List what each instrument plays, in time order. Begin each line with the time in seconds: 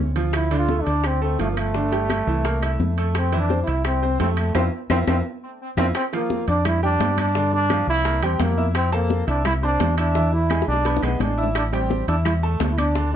Already playing: fingered electric bass D2
0.16 upright piano F3 F4, high timbale
0.33 trombone E4, high bongo, high timbale, claves
0.51 upright piano D3 D4, high bongo, high conga, high timbale
0.59 trombone F4
0.69 upright piano A3 A4, high bongo, high conga
0.83 fingered electric bass D2, trombone D4, upright piano D4, high bongo, high timbale
0.87 upright piano D5, high conga
1.04 trombone C4, high bongo, high conga, high timbale, claves
1.22 upright piano A3 A4, trombone C4, high bongo, high conga
1.39 fingered electric bass G1, upright piano F3 F4, trombone A3, high bongo, low bongo, high conga, high timbale
1.52 trombone A#3
1.57 trombone A3, high conga, high timbale, claves
1.74 upright piano D3 D4, high bongo, high conga
1.92 upright piano G3 G4, high bongo, high conga, high timbale
2.10 high bongo, high conga, high timbale, claves
2.27 fingered electric bass C2, upright piano E3 E4, high bongo
2.44 upright piano A#3 A#4, high bongo, high conga, high timbale
2.62 upright piano E4 E5, high bongo, high conga, high timbale, claves
2.79 fingered electric bass F2, high bongo, low bongo, high conga
2.98 upright piano A3 A4, high timbale
3.15 trombone C4, high bongo, high conga, high timbale, claves
3.32 upright piano E3 E4, high bongo, high conga, high timbale
3.40 trombone D4
3.50 upright piano C4 C5, high bongo, high conga
3.63 fingered electric bass C2, trombone E4, high bongo
3.67 upright piano E4 E5, high conga, high timbale
3.85 trombone C4, high bongo, high conga, high timbale, claves
4.02 upright piano C4 C5, high bongo, high conga
4.20 fingered electric bass F2, upright piano A3 A4, trombone C4, high bongo, low bongo, high conga, high timbale, low timbale
4.37 trombone A3, high conga, high timbale, claves
4.55 fingered electric bass F2, upright piano C4 E4 F4, trombone C4, high bongo, high conga, high timbale, claves
4.90 fingered electric bass F2, upright piano C4 E4 F4, trombone C4, high bongo, high conga, high timbale, claves
5.07 fingered electric bass F2, upright piano C4 E4 F4, trombone C4, high bongo, high conga, high timbale, claves
5.77 fingered electric bass F2, upright piano C4 E4 F4, trombone C4, high bongo, high conga, high timbale, claves
5.95 trombone C4, high bongo, high conga, high timbale, claves
6.13 upright piano F3 F4 F5, trombone A#3, high bongo, high conga, high timbale
6.30 high bongo, high conga
6.47 fingered electric bass F2, upright piano D4 D5 D6, trombone D4, high bongo, high conga, high timbale
6.65 trombone E4, high bongo, high conga, low conga, high timbale, claves
6.83 upright piano G3 G4 G5, trombone D4, high bongo, high conga
7.00 fingered electric bass G2, high bongo, low bongo, high conga, high timbale, low timbale
7.18 upright piano D4 D5 D6, trombone D4, high conga, high timbale, claves
7.35 upright piano D3 D4 D5, high bongo, high conga
7.53 trombone D4, high bongo, high conga
7.70 upright piano F3 F4 F5, high bongo, high conga, high timbale, claves
7.87 fingered electric bass C2, trombone E4, high bongo
8.05 upright piano A#3 A#4 A#5, high bongo, high conga, high timbale
8.22 fingered electric bass E2, upright piano G3 G4 G5, trombone C4, high bongo, high conga, high timbale, claves
8.39 fingered electric bass F2, trombone A#3, high bongo, low bongo, high conga, high timbale, low timbale
8.57 upright piano E4 E5 E6, high conga
8.75 trombone C4, high bongo, high conga, high timbale, claves
8.92 trombone A#3, upright piano C4 A4 A5, high bongo, high conga, high timbale
9.10 high bongo, high conga
9.27 fingered electric bass C2, trombone D4, upright piano E4 E5 E6, high bongo, high conga, high timbale
9.45 trombone E4, high bongo, high conga, low conga, high timbale, claves
9.63 upright piano C4 C5 C6, trombone D4, high bongo, high conga
9.80 fingered electric bass E2, high bongo, low bongo, high conga, high timbale, low timbale
9.97 trombone D4, upright piano E4 E5 E6, high timbale, claves
10.15 upright piano E3 E4 E5, high bongo, high conga
10.33 trombone E4, high bongo, high conga
10.50 upright piano G#3 G#4 G#5, high bongo, high conga, high timbale, claves
10.62 high bongo
10.68 fingered electric bass B1, trombone D4
10.73 high bongo
10.85 upright piano B3 B4 B5, high bongo, high conga, high timbale
10.97 low bongo
11.02 fingered electric bass B1, upright piano G#3 G#4 G#5, trombone B3, high conga, high timbale, claves
11.08 low bongo
11.20 fingered electric bass A1, trombone D4, low bongo, high conga, high timbale
11.38 upright piano E4 E5 E6
11.43 low bongo
11.55 trombone D4, high bongo, high conga, high timbale, claves
11.73 upright piano G3 G4 G5, trombone C4, high bongo, high conga, high timbale
11.90 high bongo, high conga
12.07 fingered electric bass E2, trombone D4, upright piano E4 E5 E6, high bongo, high conga, high timbale
12.25 trombone E4, high bongo, high conga, low conga, high timbale, claves
12.43 upright piano A3 A4 A5, high bongo, high conga
12.60 fingered electric bass D2, high bongo, low bongo, high conga, high timbale, low timbale
12.72 trombone E4
12.78 upright piano D4 D5 D6, trombone D4, high conga, high timbale, claves
12.95 upright piano D3 D4 D5, high bongo, high conga
13.13 high bongo, high conga